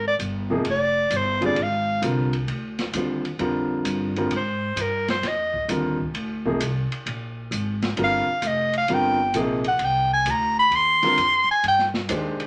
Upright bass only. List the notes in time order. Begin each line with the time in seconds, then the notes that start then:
Already playing: G#1
0.19 G1
0.65 F1
1.10 G1
1.56 G#1
2.02 C2
2.48 D2
2.93 D#2
3.40 F2
3.85 G2
4.31 G#2
4.76 G2
5.22 F2
5.68 D#2
6.14 D2
6.60 C2
7.06 A#1
7.51 G#1
7.97 G1
8.28 muted upright bass stroke
8.42 F1
8.88 G1
9.34 A#1
9.79 C2
10.25 D2
10.71 D#2
11.17 F2
11.49 muted upright bass stroke
11.63 G2
12.09 D#2
12.40 muted upright bass stroke